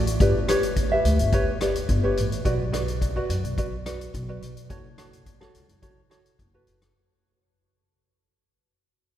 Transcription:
Already playing: A1
0.07 closed hi-hat
0.20 G1 G4 B4 D5, kick, closed hi-hat
0.48 G4 B4 C#5, cross-stick, closed hi-hat
0.63 closed hi-hat
0.76 kick, closed hi-hat
0.92 G4 B4 E5
1.05 D2, closed hi-hat
1.19 G1, closed hi-hat
1.32 G4 B4 C#5, kick, closed hi-hat
1.61 G4 B4 D5, cross-stick, closed hi-hat
1.75 closed hi-hat
1.89 G1, kick, closed hi-hat
2.03 G4 B4 C#5
2.17 A1, closed hi-hat
2.32 closed hi-hat
2.45 B1 F#4 B4 D5, kick, closed hi-hat
2.72 F#4 B4 D5, cross-stick, closed hi-hat
2.88 closed hi-hat
3.02 kick, closed hi-hat
3.16 F#4 B4 D5
3.29 F#2, closed hi-hat
3.44 B1, closed hi-hat
3.58 F#4 B4 D5, kick, closed hi-hat
3.86 F#4 B4 D5, cross-stick, closed hi-hat
4.01 closed hi-hat
4.14 B1, kick, closed hi-hat
4.29 F#4 B4 D5
4.42 B1, closed hi-hat
4.57 closed hi-hat
4.69 F#1 F#4 A4 C#5, kick, closed hi-hat
4.98 F#4 A4 C#5, cross-stick, closed hi-hat
5.13 closed hi-hat
5.26 kick, closed hi-hat
5.41 F#4 A4 C#5, cross-stick
5.55 C#2, closed hi-hat
5.69 F#1, closed hi-hat
5.82 F#4 A4 C#5, kick, closed hi-hat
6.10 F#4 A4 C#5, cross-stick, closed hi-hat
6.26 closed hi-hat
6.39 F#1, kick, closed hi-hat
6.54 F#4 A4 B4
6.67 F#1, closed hi-hat
6.82 cross-stick, closed hi-hat

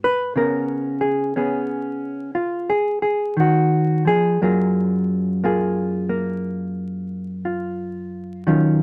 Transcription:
Already playing: G#2 G#3 B3 D#4
0.04 B4
0.36 C#3 B3 C#4 A#4
1.01 G#4
1.36 B3 C#4 G#4
2.35 F4
2.70 G#4
3.02 G#4
3.37 D#3 F#4
4.05 F3 G#4
4.42 F#2 F#3 A#3 F4 G#4
5.44 A#3 F4 G#4
6.09 A#3
7.45 F4
8.47 D#3 F#3 C#4 F4

